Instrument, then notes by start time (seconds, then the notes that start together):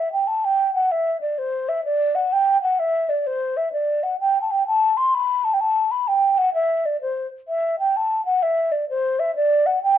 flute
0.00 E5
0.12 G5
0.27 A5
0.45 G5
0.74 F#5
0.92 E5
1.21 D5
1.38 C5
1.69 E5
1.85 D5
2.15 F#5
2.33 G5
2.62 F#5
2.79 E5
3.09 D5
3.27 C5
3.57 E5
3.73 D5
4.03 F#5
4.20 G5
4.42 A5
4.51 G5
4.67 A5
4.97 C6
5.15 B5
5.44 A5
5.54 G5
5.61 A5
5.91 B5
6.08 G5
6.38 F#5
6.54 E5
6.86 D5
7.01 C5
7.48 E5
7.79 G5
7.97 A5
8.25 F#5
8.43 E5
8.72 D5
8.89 C5
9.19 E5
9.36 D5
9.66 F#5
9.83 G5